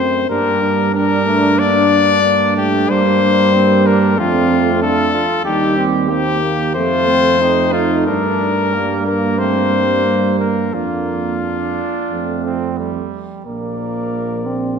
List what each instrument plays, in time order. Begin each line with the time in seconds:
Already playing: tuba F#2, trombone A3, french horn C4, trumpet C5
0.29 tuba G2, trombone G3, french horn A#3, flugelhorn D4, trumpet A#4
0.63 flugelhorn D4
0.94 trombone G3, french horn D4, trumpet A#4
1.25 trombone A3
1.58 trombone A#3, trumpet D5
2.23 trombone A#3, french horn D4
2.57 trombone A3, trumpet G4
2.89 tuba G2, trombone G3, flugelhorn A#3, trumpet C5
3.23 trombone G3
3.54 french horn A#3, flugelhorn C4
3.86 flugelhorn D4, trumpet A#4
4.18 tuba F2, trombone A3, french horn C4, flugelhorn D4, trumpet F4
4.50 trombone A3
4.82 french horn D4, flugelhorn F4, trumpet A4
5.13 flugelhorn F4
5.45 tuba D#2, trombone G3, french horn D#4, trumpet G4, flugelhorn G4
5.77 french horn C4
6.09 french horn A#3, trombone C4, trumpet G4
6.42 trombone A#3
6.75 tuba F2, trombone A3, french horn A3, flugelhorn F4, trumpet C5
7.08 french horn C4
7.41 french horn C4, flugelhorn D#4
7.72 french horn D#4, trumpet F4
8.07 tuba G2, french horn D4, flugelhorn D4, trumpet A#4
8.73 trombone G3, flugelhorn A#3, french horn D4
9.05 trombone A#3, trumpet A#4
9.38 trombone A3, french horn C4, trumpet C5
9.71 trombone G3
10.06 french horn A#3
10.39 french horn A#3, trumpet A#4
10.73 tuba F2, trombone A#3, flugelhorn A#3, french horn D4, trumpet F4
11.43 flugelhorn D4
12.11 tuba F2, trombone A3, french horn C4
12.45 flugelhorn C4
12.78 flugelhorn G3
13.46 tuba A#1, trombone F3, french horn A#3, flugelhorn A#4, trumpet D5
14.46 french horn C4